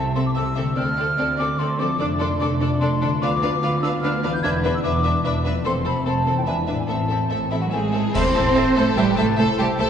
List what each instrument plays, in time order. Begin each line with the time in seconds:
Already playing: double bass section C2, cello section C3, harp C3 A3 E4 C5, french horn section A3 C4, flute A5
0.15 viola section C4, violin section A4 E5, flute C6
0.26 flute D6
0.35 double bass section C2, cello section C3, viola section C4, violin section A4 E5, flute E6
0.55 viola section C4, violin section A4 E5
0.59 harp D3
0.63 harp A3
0.68 harp D4
0.72 harp C5, violin section D5
0.76 double bass section D2, cello section D3, french horn section A3 C4, viola section C4, violin section A4, flute F6
0.97 viola section C4, violin section A4 D5
1.17 double bass section D2, cello section D3, viola section C4, violin section A4 D5
1.37 viola section C4, violin section A4 D5, flute D6
1.57 double bass section D2, cello section D3, viola section C4, violin section A4 D5, flute C6
1.79 harp F3, viola section C4, violin section A4 D5, flute D6
1.86 harp A3
1.90 harp D4
1.95 double bass section F1, french horn section D4, violin section A4, harp D5
1.99 cello section F2, viola section D4, violin section D5, flute D6
2.19 viola section D4, violin section A4 D5, flute C6
2.39 double bass section F1, cello section F2, viola section D4, violin section A4 D5, flute D6
2.61 viola section D4, violin section A4 D5
2.79 double bass section F1, cello section F2, viola section D4, violin section A4 D5, flute C6
3.01 harp D3, viola section D4, violin section A4 D5
3.08 harp B3
3.13 harp F4
3.17 double bass section D2, cello section D2, french horn section B3 F4, harp D5
3.22 viola section D4, violin section B4 F5, flute D6
3.43 viola section D4, violin section B4 F5
3.61 double bass section D2, cello section D2, viola section D4, violin section B4 F5
3.82 viola section D4, violin section B4 F5, flute E6
4.02 double bass section D2, cello section D2, viola section D4, violin section B4 F5, flute F6
4.23 harp E3, viola section D4, violin section B4 F5
4.30 harp B3, flute G6
4.34 harp E4
4.39 double bass section E1, harp D5, flute G#6
4.43 cello section E2, french horn section D4, viola section D4, violin section B4 E5
4.64 viola section D4, violin section B4 E5
4.74 flute E6
4.83 double bass section E1, cello section E2, viola section D4, violin section B4 E5, flute D6
5.03 viola section D4, violin section B4 E5
5.24 double bass section E1, cello section E2, viola section D4, violin section B4 E5, flute D6
5.44 harp F3, viola section D4, violin section B4 E5
5.52 harp A3
5.56 harp C4
5.61 double bass section F1, french horn section A3 C4, violin section A4, harp C5
5.65 cello section F2, viola section C4, violin section C5, flute C6
5.85 viola section C4, violin section A4 C5, flute B5
6.05 double bass section F1, cello section F2, viola section C4, violin section A4 C5, flute A5
6.26 harp E3, viola section C4, violin section A4 C5
6.34 harp B3, flute G5
6.38 harp E4
6.43 double bass section E1, french horn section B3 D4, violin section B4 E5, harp D5
6.47 cello section E2, viola section D4, flute G#5
6.67 harp A2, viola section D4, violin section B4 E5
6.75 harp A3, flute G#5
6.80 harp E4
6.84 double bass section A1, french horn section A3 C4, violin section A4 E5, harp C5, flute A5
6.90 cello section A2, viola section C4
7.10 viola section C4, violin section A4 E5
7.30 double bass section A1, cello section A2, viola section C4, violin section A4 E5
7.51 cello section E3, viola section C4, violin section E4 A4 E5, flute E5
7.61 cello section F#3, violin section F#4, flute F#5
7.71 double bass section A1, cello section A2 G#3, viola section C4, violin section G#4 A4 E5, flute G#5
7.93 harp A2, viola section C4, violin section A4 E5
8.01 harp A3
8.05 harp E4
8.10 harp A4, violin section C5
8.14 double bass section A1, cello section C4, french horn section A4, viola section A4 C5, violin section E5 A5, flute C6, concert bass drum, crash
8.35 double bass section A1, viola section A4 C5, violin section E5 A5
8.55 double bass section A1, viola section A4 C5, cor anglais C5, violin section E5 A5
8.76 double bass section A1, cello section A3, violin section A4 E5 A5, viola section A4 C5, flute A5
8.96 double bass section A1, cello section G3, violin section G4 E5 A5, viola section A4 C5, cor anglais B4, flute G5
9.17 double bass section A1, harp C3, cello section A3, violin section A4 E5 A5, viola section A4 C5, flute A5
9.24 harp A3
9.29 harp E4
9.33 harp A4
9.38 double bass section C2, cello section A3, cor anglais A4, violin section A4 E5 A5, viola section A4 C5, french horn section C5, flute A5
9.58 double bass section C2, cello section G3, violin section G4 E5 A5, viola section A4 C5, flute G5
9.78 double bass section C2, cello section A3, violin section A4 E5 A5, viola section A4 C5, flute A5